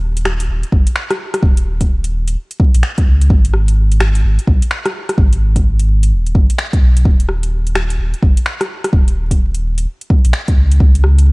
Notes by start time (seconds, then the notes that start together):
Already playing: D#1
0.17 closed hi-hat
0.25 finger snap, cross-stick
0.40 closed hi-hat
0.49 D#1
0.63 closed hi-hat
0.72 F#1, kick
0.87 closed hi-hat
0.96 finger snap
1.11 cross-stick, closed hi-hat
1.34 cross-stick, closed hi-hat
1.43 D#1, kick
1.57 closed hi-hat
1.81 kick, closed hi-hat
2.04 closed hi-hat
2.28 closed hi-hat
2.51 closed hi-hat
2.60 kick
2.74 A#1, closed hi-hat
2.83 finger snap
2.98 kick, closed hi-hat
3.07 C#2
3.21 closed hi-hat
3.30 G#1, kick
3.45 closed hi-hat
3.54 cross-stick
3.68 closed hi-hat
3.92 closed hi-hat
4.00 finger snap, cross-stick
4.15 closed hi-hat
4.24 G#1
4.39 closed hi-hat
4.47 B1, kick
4.62 closed hi-hat
4.71 finger snap
4.85 cross-stick, closed hi-hat
5.09 cross-stick, closed hi-hat
5.18 G#1, kick
5.33 closed hi-hat
5.56 kick, closed hi-hat
5.80 closed hi-hat
6.03 closed hi-hat
6.12 D#1
6.27 closed hi-hat
6.35 G#1, kick
6.50 closed hi-hat
6.58 finger snap
6.73 kick, closed hi-hat
6.82 B1
6.97 closed hi-hat
7.05 D#1, kick
7.20 closed hi-hat
7.29 cross-stick
7.43 closed hi-hat
7.67 closed hi-hat
7.75 finger snap, cross-stick
7.90 closed hi-hat
7.99 D#1
8.14 closed hi-hat
8.22 F#1, kick
8.37 closed hi-hat
8.46 finger snap
8.61 cross-stick, closed hi-hat
8.84 cross-stick, closed hi-hat
8.93 D#1, kick
9.08 closed hi-hat
9.31 kick, closed hi-hat
9.55 closed hi-hat
9.78 closed hi-hat
10.01 closed hi-hat
10.10 kick
10.25 A#1, closed hi-hat
10.33 finger snap
10.48 kick, closed hi-hat
10.57 C#2
10.72 closed hi-hat
10.80 C#2, kick
10.95 closed hi-hat
11.04 cross-stick
11.19 closed hi-hat